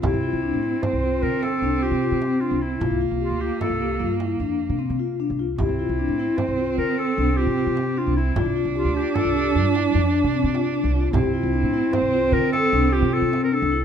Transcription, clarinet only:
\new Staff \with { instrumentName = "Clarinet" } { \time 7/4 \key f \major \tempo 4 = 151 e'2 c''4 bes'8 a'4 g'4. f'8 e'8~ | e'8 r8 f'8 g'8 a'4. r2. r8 | e'2 c''4 bes'8 a'4 g'4. f'8 e'8~ | e'8 r8 f'8 g'8 a'4. r2. r8 |
e'2 c''4 bes'8 a'4 g'8 a'8. bes'16 a'8. r16 | }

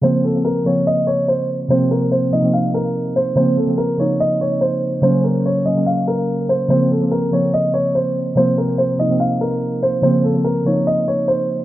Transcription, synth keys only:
\new Staff \with { instrumentName = "Synth keys" } { \clef bass \time 4/4 \key bes \minor \tempo 4 = 144 <des f bes c'>8 r16 <des f bes c'>8 r16 <des f bes c'>4~ <des f bes c'>16 r4 r16 | <c f bes c'>4 r8 <c f bes ees'>16 <c f bes c'>4~ <c f bes c'>16 r4 | <des f bes c'>8 r16 <des f bes c'>8 r16 <des f bes ees'>4~ <des f bes ees'>16 r4 r16 | <des ges bes des'>4 r8 <des ges bes des'>16 <des ges bes des'>4~ <des ges bes des'>16 r4 |
<des f bes c'>8 r16 <des f bes c'>8 r16 <des f bes c'>4~ <des f bes c'>16 r4 r16 | <c f bes c'>4 r8 <c f bes ees'>16 <c f bes c'>4~ <c f bes c'>16 r4 | <des f bes c'>8 r16 <des f bes c'>8 r16 <des f bes ees'>4~ <des f bes ees'>16 r4 r16 | }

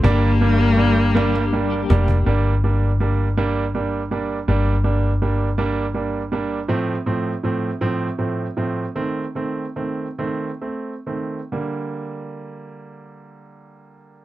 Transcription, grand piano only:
\new Staff \with { instrumentName = "Grand piano" } { \time 6/8 \key g \minor \tempo 4. = 54 <g bes d'>8 <g bes d'>8 <g bes d'>8 <g bes d'>8 <g bes d'>8 <g bes d'>8 | <g bes d'>8 <g bes d'>8 <g bes d'>8 <g bes d'>8 <g bes d'>8 <g bes d'>8 | <g bes d'>8 <g bes d'>8 <g bes d'>8 <g bes d'>8 <g bes d'>8 <g bes d'>8 | <a, f a c'>8 <a, f a c'>8 <a, f a c'>8 <a, f a c'>8 <a, f a c'>8 <a, f a c'>8 |
<ees a c'>8 <ees a c'>8 <ees a c'>8 <ees a c'>8 <a c'>8 <ees a c'>8 | <d g bes>2. | }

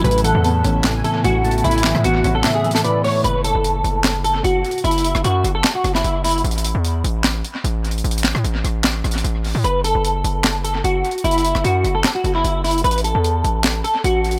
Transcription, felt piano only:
\new Staff \with { instrumentName = "Felt piano" } { \clef bass \time 4/4 \key fis \minor \tempo 4 = 150 a,8 e8 b8 cis'8 a,8 e8 a,8 a8 | a,8 e8 b8 cis'8 a,8 e8 a,8 a8 | r1 | r1 |
r1 | r1 | r1 | r1 |
r1 | }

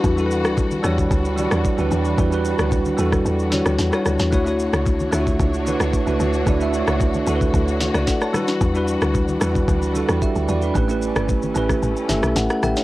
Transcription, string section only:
\new Staff \with { instrumentName = "String section" } { \time 4/4 \key e \dorian \tempo 4 = 112 << { <e d'>1~ | <e d'>1 | <a d' cis''>1~ | <a d' cis''>2.~ <a d' cis''>8 <e d'>8~ |
<e d'>1 | <a cis'>1 | } \\ { <g fis'>1~ | <g fis'>1 | fis'1~ | fis'2.~ fis'8 g8~ |
g1~ | g1 | } >> }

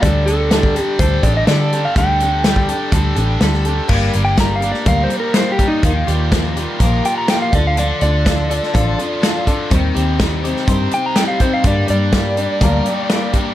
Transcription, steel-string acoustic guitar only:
\new Staff \with { instrumentName = "Steel-string acoustic guitar" } { \time 4/4 \key g \minor \tempo 4 = 124 <d g d' g' a'>8 <d' g' a'>8 <d g d' g' a'>8 <d' g' a'>8 <g d' g' a'>8 <d' g' a'>8 <d g d' g' a'>8 <d' g' a'>8 | <d g d' g' a'>8 <d' g' a'>8 <d g d' g' a'>8 <d' g' a'>8 <g d' g' a'>8 <d' g' a'>8 <d g d' g' a'>8 <d' g' a'>8 | <g, d g bes g' bes'>8 <g bes g' bes'>8 <g bes g' bes'>8 <g bes g' bes'>8 <g, d g bes g' bes'>8 <g bes g' bes'>8 <g bes g' bes'>8 <g bes g' bes'>8 | <ees f bes f' g'>8 <bes f' g'>8 <f bes f' g'>8 <bes f' g'>8 <ees f bes f' g'>8 <bes f' g'>8 <f bes f' g'>8 <d' f' a'>8 |
<d f d' f' a'>8 <d' f' a'>8 <f d' f' a'>8 <d' f' a'>8 <d f d' f' a'>8 <d' f' a'>8 <f d' f' a'>8 <d' f' a'>8 | <ees g c' ees' g'>8 <c' ees' g'>8 <g c' ees' g'>8 <c' ees' g'>8 <ees g c' ees' g'>8 <c' ees' g'>8 <g c' ees' g'>8 <c' ees' g'>8 | <g, d g bes d' g'>8 <g bes d' g'>8 <g bes d' g'>8 <g bes d' g'>8 <g, d g bes d' g'>8 <g bes d' g'>8 <g bes d' g'>8 <g bes d' g'>8 | }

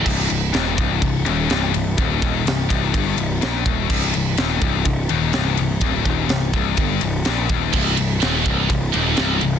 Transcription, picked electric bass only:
\new Staff \with { instrumentName = "Picked electric bass" } { \clef bass \time 4/4 \key c \minor \tempo 4 = 125 c,,8 c,,8 ees,,8 c,,8 c,,8 ees,,8 c,,8 c,,8 | d,,8 ees,,8 c,,8 c,,8 g,,8 c,,8 bes,,8 ees,,8 | c,,8 c,,8 ees,,8 c,,8 c,,8 ees,,8 c,,8 c,,8 | d,,8 ees,,8 c,,8 c,,8 g,,8 c,,8 bes,,8 ees,,8 |
c,,8 c,,8 ees,,8 c,,8 c,,8 ees,,8 c,,8 c,,8 | }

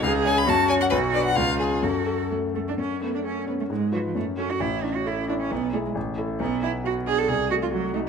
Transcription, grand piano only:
\new Staff \with { instrumentName = "Grand piano" } { \time 2/4 \key fis \minor \tempo 4 = 134 cis,8 <cis' cis''>8 fis,8 <cis' cis''>8 | b,,8 <d' b'>8 cis,8 <cis' gis'>8 | fis,8 a'8 a8 a'8 | fis,8 a8 a'8 cis'8 |
gis,8 <eis' b'>8 fis,8 <fis' a'>8 | a,,8 cis'8 a'8 e'8 | b,,8 <e' gis'>8 a,,8 <e' a'>8 | b,,8 b8 fis'8 d'8 |
c,8 a8 ges'8 ees'8 | }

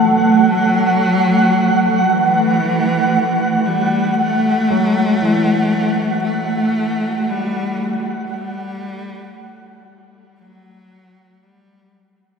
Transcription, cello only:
\new Staff \with { instrumentName = "Cello" } { \clef bass \time 4/4 \key fis \phrygian \tempo 4 = 58 fis2 e4. g8 | a2 a4 g8. r16 | g4. r8 fis4 g8. r16 | }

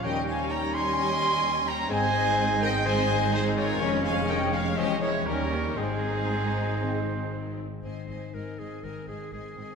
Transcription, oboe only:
\new Staff \with { instrumentName = "Oboe" } { \time 4/4 \key aes \major \tempo 4 = 123 des''2.~ des''8 r8 | c''2 c''4 c''4 | des''2 des''4 des''4 | c''2.~ c''8 r8 |
r1 | }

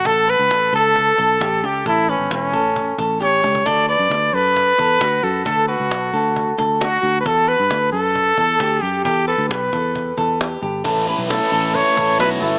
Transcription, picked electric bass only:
\new Staff \with { instrumentName = "Picked electric bass" } { \clef bass \time 4/4 \key a \mixolydian \tempo 4 = 134 a,,8. cis,16 a,,8 cis,4 b,,8 a,,8 cis,8 | a,,8. g,,16 e,,8 a,,4 a,,4 cis,8 | d,8. fis,16 d,8 fis,4 e,8 d,8 fis,8 | d,8. cis,16 b,,8 d,4 d,4 d,8 |
e,8. g,16 d,8 fis,4 e,8 d,8 fis,8 | e,8. d,16 b,,8 e,4 e,4 g,,8 | a,,8. b,,8 r16 a,,8. r16 a,,8 b,,8 g,,8 | }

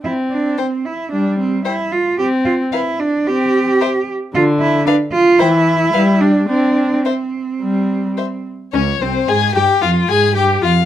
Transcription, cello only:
\new Staff \with { instrumentName = "Cello" } { \time 4/4 \key c \major \tempo 4 = 111 e'8 d'8 c'8 e'8 d'8 c'8 e'8 f'8 | g'8 f'8 e'8 d'8 g'4. r8 | f'8 e'8 d'8 f'8 e'4. d'8 | d'4 c'2~ c'8 r8 |
\key f \minor des,8 c,8 aes,8 g,8 f,8 aes,8 g,8 f,8 | }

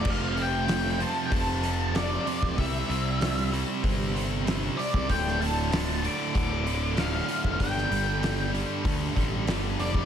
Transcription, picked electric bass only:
\new Staff \with { instrumentName = "Picked electric bass" } { \clef bass \time 4/4 \key f \major \tempo 4 = 96 f,,2 f,,4.~ f,,16 d,,16 | c,8 c,4. g,,4.~ g,,16 c,16 | d,,2 d,,4.~ d,,16 f,,16 | g,,8 g,,4. d,8 a,,8 g,,8 f,,8 | }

